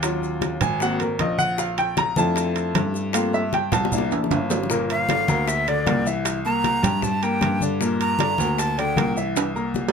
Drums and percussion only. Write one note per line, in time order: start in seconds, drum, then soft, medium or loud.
0.02 high bongo medium
0.02 high conga soft
0.02 high timbale loud
0.02 maracas medium
0.22 high bongo soft
0.22 high conga soft
0.22 maracas soft
0.41 high bongo medium
0.41 high conga medium
0.41 high timbale medium
0.41 maracas soft
0.61 high conga soft
0.61 low conga medium
0.61 high timbale medium
0.61 maracas medium
0.80 high bongo medium
0.80 high conga soft
0.80 maracas medium
1.00 high bongo soft
1.00 high conga soft
1.00 high timbale medium
1.00 maracas soft
1.19 high bongo soft
1.19 low bongo medium
1.19 high conga medium
1.19 high timbale medium
1.19 maracas soft
1.38 high bongo soft
1.38 high conga medium
1.38 maracas medium
1.58 high bongo medium
1.58 high conga soft
1.58 maracas medium
1.77 high bongo soft
1.77 high conga soft
1.77 high timbale medium
1.77 maracas soft
1.97 high bongo medium
1.97 high conga medium
1.97 high timbale medium
1.97 maracas soft
2.16 high conga loud
2.16 maracas medium
2.36 high bongo medium
2.36 high conga soft
2.36 high timbale medium
2.36 maracas medium
2.55 high bongo soft
2.55 high conga soft
2.55 high timbale medium
2.55 maracas soft
2.75 high bongo soft
2.75 low bongo medium
2.75 high conga medium
2.75 high timbale loud
2.75 low timbale medium
2.75 maracas soft
2.94 high bongo soft
2.94 maracas medium
3.13 high bongo medium
3.13 high conga soft
3.13 high timbale loud
3.13 maracas medium
3.33 high bongo soft
3.33 high conga soft
3.33 maracas soft
3.53 high bongo medium
3.53 high conga medium
3.53 high timbale medium
3.53 maracas soft
3.72 high bongo loud
3.72 high conga soft
3.72 low conga medium
3.72 high timbale medium
3.72 maracas medium
3.85 high bongo medium
3.92 high conga soft
3.92 low conga medium
3.92 maracas medium
3.98 high bongo medium
4.11 high conga soft
4.11 high timbale medium
4.11 maracas soft
4.24 low bongo medium
4.31 high conga medium
4.31 high timbale medium
4.31 maracas soft
4.50 low bongo loud
4.50 low timbale medium
4.50 maracas medium
4.63 low bongo medium
4.70 high bongo medium
4.70 high conga soft
4.70 maracas medium
4.89 high bongo soft
4.89 high conga soft
4.89 high timbale medium
4.89 maracas soft
5.09 high bongo medium
5.09 high conga medium
5.09 high timbale medium
5.09 maracas soft
5.28 high conga loud
5.28 maracas medium
5.48 high bongo medium
5.48 high conga soft
5.48 high timbale medium
5.48 maracas medium
5.67 high bongo soft
5.67 high conga soft
5.67 high timbale medium
5.67 maracas soft
5.87 high bongo soft
5.87 low bongo medium
5.87 high conga medium
5.87 high timbale medium
5.87 maracas soft
6.06 high bongo soft
6.06 maracas medium
6.25 high bongo medium
6.25 high conga soft
6.25 high timbale loud
6.25 maracas medium
6.45 high bongo soft
6.45 high conga soft
6.45 maracas soft
6.64 high bongo medium
6.64 high conga medium
6.64 high timbale medium
6.64 maracas soft
6.84 high conga soft
6.84 low conga medium
6.84 high timbale medium
6.84 maracas medium
7.02 high bongo medium
7.02 high conga soft
7.02 low conga medium
7.02 maracas medium
7.22 high bongo soft
7.22 high conga soft
7.22 high timbale medium
7.22 maracas soft
7.41 high bongo soft
7.41 low bongo medium
7.41 high conga medium
7.41 high timbale medium
7.41 maracas soft
7.61 high bongo soft
7.61 high conga medium
7.61 maracas medium
7.80 high bongo medium
7.80 high conga soft
7.80 maracas medium
7.99 high bongo soft
7.99 high conga soft
7.99 high timbale medium
7.99 maracas soft
8.19 high bongo medium
8.19 high conga medium
8.19 high timbale medium
8.19 maracas soft
8.38 high conga loud
8.38 maracas medium
8.58 high bongo medium
8.58 high conga soft
8.58 high timbale medium
8.58 maracas medium
8.77 high bongo soft
8.77 high conga soft
8.77 high timbale medium
8.77 maracas soft
8.96 high bongo soft
8.96 low bongo medium
8.96 high conga medium
8.96 high timbale loud
8.96 maracas soft
9.17 high bongo soft
9.17 maracas medium
9.36 high bongo medium
9.36 high conga soft
9.36 high timbale loud
9.36 maracas medium
9.55 high bongo soft
9.55 high conga soft
9.55 maracas soft
9.74 high bongo medium
9.74 high conga medium
9.74 maracas soft
9.89 low timbale loud